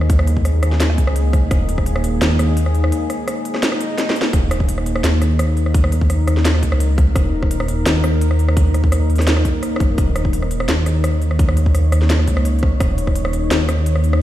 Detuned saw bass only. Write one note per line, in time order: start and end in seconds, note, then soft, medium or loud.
0.00 0.62 D#2 medium
0.63 0.97 D#2 loud
0.98 1.41 C#2 loud
1.51 2.20 D#1 loud
2.21 2.38 D#2 loud
2.39 2.92 D#2 medium
4.33 5.03 D#1 medium
5.04 5.20 D#2 loud
5.21 6.26 D#2 medium
6.27 6.62 D#2 loud
6.63 7.06 C#2 loud
7.16 7.85 D#1 loud
7.86 8.02 D#2 loud
8.04 9.09 D#2 medium
9.10 9.44 D#2 loud
9.80 9.97 F#1 medium
9.98 10.67 D#1 loud
10.69 10.85 D#2 medium
10.86 11.91 D#2 medium
11.92 12.26 D#2 loud
12.27 12.71 C#2 loud
12.80 13.50 D#1 loud
13.51 13.67 D#2 loud
13.69 14.22 D#2 medium